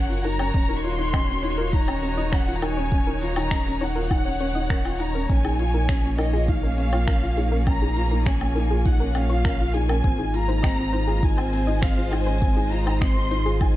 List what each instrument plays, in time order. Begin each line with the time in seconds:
Already playing: sub bass F#1, string section F#3 F#4 A#4 C#5, violin section F#5
0.10 upright piano F4, closed hi-hat
0.25 upright piano D#4, synth arpeggio sound A#4, violin section A#5, closed hi-hat
0.39 upright piano C#4, synth arpeggio sound C#5, closed hi-hat, low woodblock
0.54 sub bass D#1, string section D#3, upright piano C#4, kick, closed hi-hat
0.67 string section D#4, upright piano D#4, synth arpeggio sound A#4, closed hi-hat
0.77 violin section C#6
0.84 upright piano F4, violin section C6, closed hi-hat
0.99 upright piano D#4, synth arpeggio sound C#5, closed hi-hat
1.13 upright piano C#4, synth arpeggio sound D#5, finger snap, kick, closed hi-hat, low woodblock
1.29 upright piano C#4, closed hi-hat
1.43 upright piano D#4, synth arpeggio sound C#5, closed hi-hat
1.58 upright piano F4, synth arpeggio sound A#4, closed hi-hat
1.73 upright piano D#4, violin section A#5, kick, closed hi-hat
1.88 upright piano C#4, synth arpeggio sound C#5, closed hi-hat, low woodblock
2.03 upright piano C#4, closed hi-hat
2.17 upright piano D#4, synth arpeggio sound D#5, closed hi-hat
2.32 upright piano C#4, synth arpeggio sound C#5, violin section F#5, finger snap, kick, closed hi-hat
2.47 upright piano F4, closed hi-hat
2.55 violin section A#5
2.62 upright piano D#4, synth arpeggio sound A#4, violin section G#5, closed hi-hat, low woodblock
2.77 upright piano C#4, synth arpeggio sound C#5, closed hi-hat
2.92 upright piano C#4, kick, closed hi-hat
3.07 upright piano D#4, synth arpeggio sound A#4, closed hi-hat
3.21 upright piano F4, violin section A#5, closed hi-hat
3.36 upright piano D#4, synth arpeggio sound C#5, closed hi-hat, low woodblock
3.51 upright piano C#4, synth arpeggio sound D#5, finger snap, kick, closed hi-hat
3.66 upright piano C#4, closed hi-hat
3.81 upright piano D#4, synth arpeggio sound C#5, violin section F#5, closed hi-hat
3.95 upright piano F4, synth arpeggio sound A#4, closed hi-hat
4.11 upright piano D#4, kick, closed hi-hat, low woodblock
4.25 upright piano C#4, synth arpeggio sound C#5, closed hi-hat
4.40 upright piano C#4, synth arpeggio sound C#5, closed hi-hat
4.55 upright piano D#4, synth arpeggio sound D#5, closed hi-hat
4.70 upright piano C#4, synth arpeggio sound A#4, finger snap, kick, closed hi-hat
4.85 upright piano F4, closed hi-hat, low woodblock
5.00 upright piano D#4, synth arpeggio sound F#5, violin section A#5, closed hi-hat
5.15 upright piano C#4, synth arpeggio sound A#4, closed hi-hat
5.30 sub bass A#1, string section A#3, upright piano C#4, violin section G#5, kick, closed hi-hat
5.44 upright piano D#4, synth arpeggio sound G#4, closed hi-hat, low woodblock
5.52 string section F4
5.59 upright piano F4, closed hi-hat
5.66 string section G#4
5.74 upright piano D#4, synth arpeggio sound A#4, closed hi-hat
5.89 upright piano C#4, synth arpeggio sound C#5, finger snap, kick, closed hi-hat
6.04 upright piano C#4, closed hi-hat
6.18 upright piano D#4, synth arpeggio sound A#4, violin section D#5, closed hi-hat, low woodblock
6.33 upright piano F4, synth arpeggio sound G#4, closed hi-hat
6.48 upright piano D#4, violin section F5, kick, closed hi-hat
6.63 upright piano C#4, synth arpeggio sound A#4, closed hi-hat
6.78 upright piano C#4, violin section F5, closed hi-hat
6.93 upright piano F4, synth arpeggio sound C#5, closed hi-hat, low woodblock
7.07 upright piano C#4, synth arpeggio sound A#4, finger snap, kick, closed hi-hat
7.22 upright piano F4, closed hi-hat
7.37 upright piano D#4, synth arpeggio sound G#4, closed hi-hat
7.52 upright piano C#4, synth arpeggio sound A#4, closed hi-hat
7.67 upright piano C#4, violin section A#5, kick, closed hi-hat, low woodblock
7.82 upright piano D#4, synth arpeggio sound G#4, closed hi-hat
7.96 upright piano F4, closed hi-hat
8.11 upright piano D#4, synth arpeggio sound A#4, closed hi-hat
8.26 upright piano C#4, synth arpeggio sound C#5, violin section G#5, finger snap, kick, closed hi-hat
8.41 upright piano C#4, closed hi-hat, low woodblock
8.55 upright piano D#4, synth arpeggio sound A#4, closed hi-hat
8.70 upright piano F4, synth arpeggio sound G#4, closed hi-hat
8.86 upright piano D#4, violin section F#5, kick, closed hi-hat
9.00 upright piano C#4, synth arpeggio sound A#4, closed hi-hat
9.15 upright piano C#4, violin section F5, closed hi-hat, low woodblock
9.30 upright piano F4, synth arpeggio sound C#5, closed hi-hat
9.44 upright piano C#4, synth arpeggio sound A#4, finger snap, kick, closed hi-hat
9.60 upright piano F4, closed hi-hat
9.74 upright piano D#4, synth arpeggio sound G#4, violin section G#5, closed hi-hat
9.89 upright piano C#4, synth arpeggio sound A#4, closed hi-hat, low woodblock
10.04 sub bass G#1, string section G#3, upright piano C4, kick, closed hi-hat
10.18 upright piano D#4, synth arpeggio sound G#4, closed hi-hat
10.34 upright piano F4, violin section A#5, closed hi-hat
10.48 upright piano D#4, synth arpeggio sound C5, closed hi-hat
10.63 upright piano C4, synth arpeggio sound D#5, string section D#5, finger snap, kick, closed hi-hat, low woodblock
10.79 upright piano C4, string section C5, closed hi-hat
10.93 upright piano D#4, synth arpeggio sound C5, closed hi-hat
11.07 upright piano F4, synth arpeggio sound G#4, closed hi-hat
11.23 upright piano D#4, violin section G#5, kick, closed hi-hat
11.37 upright piano C4, synth arpeggio sound C5, closed hi-hat, low woodblock
11.53 upright piano C4, closed hi-hat
11.67 upright piano D#4, synth arpeggio sound D#5, closed hi-hat
11.82 upright piano C4, synth arpeggio sound C5, violin section F5, finger snap, kick, closed hi-hat
11.97 upright piano F4, closed hi-hat
12.11 upright piano D#4, synth arpeggio sound G#4, violin section G#5, closed hi-hat, low woodblock
12.27 upright piano C#4, synth arpeggio sound C5, closed hi-hat
12.42 upright piano C4, kick, closed hi-hat
12.56 upright piano D#4, synth arpeggio sound G#4, closed hi-hat
12.72 upright piano F4, violin section A#5, closed hi-hat
12.86 upright piano D#4, synth arpeggio sound C5, closed hi-hat, low woodblock
13.01 upright piano C4, synth arpeggio sound D#5, violin section C6, finger snap, kick, closed hi-hat
13.16 upright piano C4, closed hi-hat
13.31 upright piano D#4, synth arpeggio sound C5, closed hi-hat
13.46 upright piano F4, synth arpeggio sound G#4, closed hi-hat
13.61 upright piano D#4, violin section G#5, kick, closed hi-hat, low woodblock